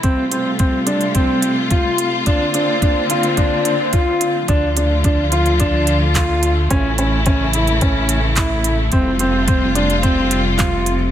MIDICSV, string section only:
0, 0, Header, 1, 2, 480
1, 0, Start_track
1, 0, Key_signature, -1, "minor"
1, 0, Tempo, 555556
1, 37, Time_signature, 4, 2, 24, 8
1, 9602, End_track
2, 0, Start_track
2, 0, Title_t, "String section"
2, 0, Program_c, 0, 48
2, 34, Note_on_c, 0, 55, 77
2, 35, Note_on_c, 0, 65, 93
2, 36, Note_on_c, 0, 57, 73
2, 37, Note_on_c, 0, 48, 77
2, 1937, Note_off_c, 0, 55, 0
2, 1937, Note_off_c, 0, 57, 0
2, 1938, Note_off_c, 0, 48, 0
2, 1948, Note_on_c, 0, 60, 76
2, 1953, Note_on_c, 0, 58, 75
2, 1954, Note_on_c, 0, 50, 82
2, 3842, Note_off_c, 0, 65, 0
2, 3854, Note_off_c, 0, 60, 0
2, 3856, Note_off_c, 0, 58, 0
2, 3857, Note_off_c, 0, 50, 0
2, 3867, Note_on_c, 0, 53, 77
2, 3871, Note_on_c, 0, 65, 90
2, 3872, Note_on_c, 0, 50, 82
2, 3873, Note_on_c, 0, 57, 77
2, 5773, Note_off_c, 0, 53, 0
2, 5775, Note_off_c, 0, 50, 0
2, 5775, Note_off_c, 0, 65, 0
2, 5792, Note_on_c, 0, 64, 89
2, 5793, Note_on_c, 0, 52, 74
2, 5799, Note_on_c, 0, 49, 79
2, 7696, Note_off_c, 0, 52, 0
2, 7696, Note_off_c, 0, 64, 0
2, 7699, Note_off_c, 0, 49, 0
2, 7709, Note_on_c, 0, 48, 87
2, 7709, Note_on_c, 0, 65, 96
2, 7710, Note_on_c, 0, 55, 75
2, 9601, Note_off_c, 0, 57, 0
2, 9602, Note_off_c, 0, 48, 0
2, 9602, Note_off_c, 0, 55, 0
2, 9602, Note_off_c, 0, 65, 0
2, 9602, End_track
0, 0, End_of_file